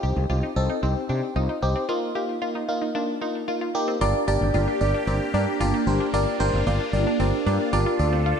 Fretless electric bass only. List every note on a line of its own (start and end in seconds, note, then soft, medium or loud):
0.03 0.14 C2 medium
0.16 0.27 C2 loud
0.30 0.41 C2 loud
0.56 0.67 C2 loud
0.83 0.94 C2 loud
1.09 1.20 C3 medium
1.36 1.47 C2 loud
1.62 1.73 C2 medium
4.01 4.12 G1 loud
4.28 4.39 G1 loud
4.41 4.52 G1 medium
4.54 4.65 G1 loud
4.81 4.92 G1 loud
5.07 5.18 G1 loud
5.34 5.45 G2 loud
5.60 5.71 G1 loud
5.87 5.98 G1 loud
6.13 6.24 G1 loud
6.40 6.51 G1 loud
6.53 6.64 G1 loud
6.67 6.78 G1 loud
6.93 7.04 G1 loud
7.20 7.31 G1 loud
7.46 7.57 G2 loud
7.73 7.84 G1 loud
7.99 8.32 D2 loud